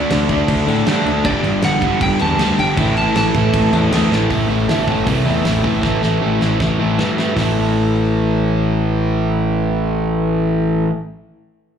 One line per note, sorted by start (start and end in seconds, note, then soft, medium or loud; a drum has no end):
0.00 0.66 D3 loud
0.00 0.67 A3 loud
0.00 0.12 D4 loud
0.00 0.65 D4 loud
0.00 0.49 D5 medium
0.10 0.25 D2 medium
0.10 0.29 D3 medium
0.10 0.29 A3 loud
0.10 0.31 D4 loud
0.10 snare loud
0.10 crash loud
0.29 0.44 D2 medium
0.29 0.47 D3 loud
0.29 0.48 A3 medium
0.29 0.86 A3 medium
0.29 0.85 D4 medium
0.29 0.49 D4 loud
0.29 kick medium
0.29 crash medium
0.33 0.85 D3 medium
0.48 0.63 D2 loud
0.48 0.66 D3 medium
0.48 0.67 A3 medium
0.48 0.67 D4 loud
0.48 kick loud
0.48 crash loud
0.67 0.82 A2 medium
0.67 0.86 D3 medium
0.67 0.85 D3 medium
0.67 0.86 A3 medium
0.67 0.85 D4 medium
0.67 0.87 D4 loud
0.67 crash medium
0.86 1.01 G2 loud
0.86 1.23 D3 medium
0.86 1.05 D3 loud
0.86 1.24 A3 medium
0.86 1.05 A3 loud
0.86 1.25 D4 loud
0.86 1.06 D4 loud
0.86 snare loud
0.86 crash medium
1.06 1.20 D2 medium
1.06 1.24 D3 medium
1.06 1.24 A3 medium
1.06 1.24 D4 medium
1.06 crash medium
1.24 1.39 G1 medium
1.24 2.19 G2 loud
1.24 1.43 G2 loud
1.24 2.19 D3 medium
1.24 1.43 D3 loud
1.24 2.19 G3 loud
1.24 1.43 G3 loud
1.24 1.65 D5 loud
1.24 kick loud
1.24 crash medium
1.44 1.58 G1 medium
1.44 1.61 G2 medium
1.44 1.62 D3 medium
1.44 1.63 G3 medium
1.44 crash medium
1.62 1.77 G1 loud
1.62 1.80 G2 loud
1.62 1.81 D3 loud
1.62 1.81 G3 loud
1.62 2.02 F#5 loud
1.62 snare loud
1.62 crash loud
1.81 1.96 G1 loud
1.81 1.99 G2 loud
1.81 2.00 D3 loud
1.81 2.39 D3 medium
1.81 2.37 G3 loud
1.81 2.00 G3 loud
1.81 kick medium
1.81 crash medium
1.85 2.37 G2 medium
2.01 2.15 G1 loud
2.01 2.18 G2 loud
2.01 2.19 D3 medium
2.01 2.20 G3 loud
2.01 2.22 G5 loud
2.01 kick loud
2.01 crash medium
2.19 2.35 E2 medium
2.19 2.38 G2 medium
2.19 2.38 D3 medium
2.19 2.38 G3 loud
2.19 2.39 G3 loud
2.19 2.59 A5 loud
2.19 crash medium
2.39 2.54 D2 loud
2.39 2.57 G2 loud
2.39 2.76 G2 medium
2.39 2.58 D3 loud
2.39 2.76 D3 loud
2.39 2.59 G3 loud
2.39 2.77 G3 loud
2.39 snare loud
2.39 crash medium
2.58 2.72 G1 loud
2.58 2.76 G2 loud
2.58 2.77 D3 medium
2.58 2.77 G3 medium
2.58 2.97 G5 loud
2.58 crash medium
2.77 3.06 A1 medium
2.77 3.71 A2 medium
2.77 2.96 A2 loud
2.77 2.96 E3 loud
2.77 3.72 E3 loud
2.77 2.96 A3 loud
2.77 3.72 A3 loud
2.77 kick loud
2.77 crash medium
2.97 3.14 A2 medium
2.97 3.16 E3 medium
2.97 3.16 A3 loud
2.97 3.16 A5 loud
2.97 crash medium
3.16 3.30 A1 loud
3.16 3.34 A2 medium
3.16 3.35 E3 loud
3.16 3.35 A3 loud
3.16 3.89 A5 loud
3.16 snare loud
3.16 crash medium
3.34 3.49 A1 medium
3.34 3.53 A2 medium
3.34 3.54 E3 medium
3.34 3.92 E3 medium
3.34 3.91 A3 medium
3.34 3.54 A3 loud
3.34 kick medium
3.34 crash medium
3.39 3.91 A2 medium
3.53 3.68 A1 medium
3.53 3.71 A2 medium
3.53 3.72 E3 medium
3.53 3.73 A3 loud
3.53 kick loud
3.53 crash loud
3.73 3.87 E2 medium
3.73 3.90 A2 medium
3.73 3.91 E3 medium
3.73 3.91 A3 loud
3.73 3.91 A3 medium
3.73 crash medium
3.91 4.06 D2 loud
3.91 4.10 A2 loud
3.91 4.29 A2 medium
3.91 4.11 E3 loud
3.91 4.29 E3 medium
3.91 4.11 A3 loud
3.91 4.30 A3 medium
3.91 snare loud
3.91 crash loud
4.11 4.25 A1 medium
4.11 4.29 A2 medium
4.11 4.29 E3 medium
4.11 4.29 A3 loud
4.11 snare medium
4.30 4.48 A1 medium
4.30 4.50 A2 medium
4.30 4.50 E3 medium
4.30 4.50 A3 loud
4.30 kick loud
4.30 open hi-hat soft
4.49 4.66 A1 medium
4.49 4.69 A2 medium
4.49 4.69 E3 medium
4.49 4.70 A3 medium
4.67 4.85 G1 medium
4.67 4.87 A2 medium
4.67 4.88 E3 medium
4.67 4.88 A3 medium
4.67 snare loud
4.67 open hi-hat medium
4.87 5.05 A1 medium
4.87 5.06 A2 medium
4.87 5.06 E3 medium
4.87 5.07 A3 medium
4.87 kick medium
5.06 5.24 C2 medium
5.06 5.24 A2 medium
5.06 5.25 E3 medium
5.06 5.25 A3 loud
5.06 kick loud
5.06 open hi-hat medium
5.25 5.43 E2 medium
5.25 5.43 A2 medium
5.25 5.43 E3 medium
5.25 5.44 A3 loud
5.43 5.62 A1 medium
5.43 5.63 A2 medium
5.43 5.63 E3 medium
5.43 5.64 A3 loud
5.43 snare loud
5.43 open hi-hat medium
5.63 5.82 A1 medium
5.63 5.81 A2 medium
5.63 5.81 E3 medium
5.63 5.81 A3 medium
5.63 kick medium
5.82 6.01 A1 medium
5.82 6.01 A2 medium
5.82 6.01 E3 loud
5.82 6.01 A3 loud
5.82 kick loud
5.82 snare medium
6.02 6.20 A1 medium
6.02 6.20 A2 medium
6.02 6.20 E3 medium
6.02 6.20 A3 medium
6.02 snare medium
6.21 6.39 A1 medium
6.21 6.39 A2 medium
6.21 6.40 E3 medium
6.21 6.40 A3 medium
6.40 6.58 A1 medium
6.40 6.58 A2 medium
6.40 6.59 E3 medium
6.40 6.60 A3 medium
6.40 snare medium
6.60 6.78 A1 medium
6.60 6.78 A2 medium
6.60 6.78 E3 loud
6.60 6.79 A3 loud
6.60 kick loud
6.60 snare medium
6.79 6.97 A1 medium
6.79 6.97 A2 medium
6.79 6.97 E3 medium
6.79 6.98 A3 loud
6.98 7.34 G2 medium
6.98 7.16 A2 medium
6.98 7.16 E3 loud
6.98 7.17 A3 medium
6.98 snare loud
7.17 7.33 A2 medium
7.17 7.35 E3 medium
7.17 7.35 A3 medium
7.17 snare medium
7.34 10.84 A1 medium
7.34 10.86 A2 medium
7.34 10.88 E3 medium
7.34 kick medium
7.34 snare medium
7.34 open hi-hat medium
7.38 10.90 A3 loud